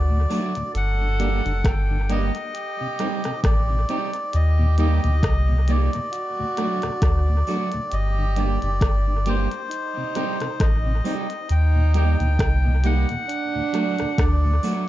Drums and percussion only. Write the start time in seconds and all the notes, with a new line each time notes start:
0.31 open hi-hat
0.55 closed hi-hat
0.75 closed hi-hat
1.20 closed hi-hat
1.46 closed hi-hat
1.64 kick, cross-stick, closed hi-hat
2.10 closed hi-hat
2.35 closed hi-hat
2.55 closed hi-hat
2.99 cross-stick, closed hi-hat
3.24 cross-stick, closed hi-hat
3.44 kick, cross-stick, closed hi-hat
3.89 closed hi-hat
4.14 closed hi-hat
4.33 closed hi-hat
4.78 closed hi-hat
5.04 closed hi-hat
5.23 kick, cross-stick, closed hi-hat
5.68 closed hi-hat
5.93 closed hi-hat
6.13 closed hi-hat
6.57 cross-stick, closed hi-hat
6.82 cross-stick, closed hi-hat
7.02 kick, cross-stick, closed hi-hat
7.47 open hi-hat
7.72 closed hi-hat
7.92 closed hi-hat
8.36 closed hi-hat
8.62 closed hi-hat
8.81 kick, cross-stick, closed hi-hat
9.26 closed hi-hat
9.52 closed hi-hat
9.71 closed hi-hat
10.15 cross-stick, closed hi-hat
10.40 cross-stick, closed hi-hat
10.60 kick, cross-stick, closed hi-hat
11.05 open hi-hat
11.30 closed hi-hat
11.49 closed hi-hat
11.94 closed hi-hat
12.20 closed hi-hat
12.39 kick, cross-stick, closed hi-hat
12.84 closed hi-hat
13.09 closed hi-hat
13.29 closed hi-hat
13.74 cross-stick, closed hi-hat
13.99 cross-stick, closed hi-hat
14.18 kick, cross-stick, closed hi-hat
14.63 open hi-hat